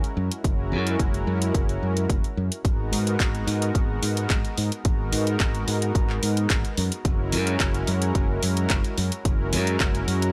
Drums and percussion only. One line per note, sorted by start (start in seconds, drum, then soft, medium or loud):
0.04 closed hi-hat soft
0.32 closed hi-hat soft
0.44 kick loud
0.44 closed hi-hat medium
0.87 closed hi-hat soft
0.99 kick loud
0.99 closed hi-hat medium
1.14 closed hi-hat soft
1.42 closed hi-hat soft
1.55 kick loud
1.55 closed hi-hat medium
1.69 closed hi-hat soft
1.97 closed hi-hat soft
2.10 kick loud
2.10 closed hi-hat medium
2.24 closed hi-hat soft
2.52 closed hi-hat soft
2.65 kick loud
2.65 closed hi-hat medium
2.93 open hi-hat loud
3.07 closed hi-hat soft
3.20 kick loud
3.20 clap loud
3.20 closed hi-hat medium
3.35 closed hi-hat soft
3.48 open hi-hat loud
3.62 closed hi-hat soft
3.75 kick loud
3.75 closed hi-hat medium
4.03 open hi-hat loud
4.17 closed hi-hat soft
4.30 kick loud
4.30 clap loud
4.30 closed hi-hat medium
4.45 closed hi-hat soft
4.58 open hi-hat loud
4.72 closed hi-hat soft
4.85 kick loud
4.85 closed hi-hat medium
5.13 open hi-hat loud
5.27 closed hi-hat soft
5.40 kick loud
5.40 clap loud
5.40 closed hi-hat medium
5.55 closed hi-hat soft
5.68 open hi-hat loud
5.82 closed hi-hat soft
5.95 kick loud
5.95 closed hi-hat medium
6.10 clap soft
6.23 open hi-hat loud
6.37 closed hi-hat medium
6.50 kick loud
6.50 clap loud
6.50 closed hi-hat medium
6.65 closed hi-hat soft
6.77 open hi-hat loud
6.92 closed hi-hat soft
7.05 kick loud
7.05 closed hi-hat medium
7.32 open hi-hat medium
7.47 closed hi-hat medium
7.60 kick loud
7.60 clap loud
7.60 closed hi-hat medium
7.74 closed hi-hat soft
7.87 open hi-hat loud
8.02 closed hi-hat medium
8.15 kick loud
8.15 closed hi-hat medium
8.43 open hi-hat loud
8.57 closed hi-hat medium
8.70 kick loud
8.70 clap loud
8.70 closed hi-hat medium
8.84 closed hi-hat soft
8.98 open hi-hat medium
9.12 closed hi-hat medium
9.25 kick loud
9.25 closed hi-hat medium
9.53 open hi-hat loud
9.67 closed hi-hat medium
9.80 kick loud
9.80 clap loud
9.80 closed hi-hat medium
9.95 closed hi-hat soft
10.08 open hi-hat loud
10.22 closed hi-hat medium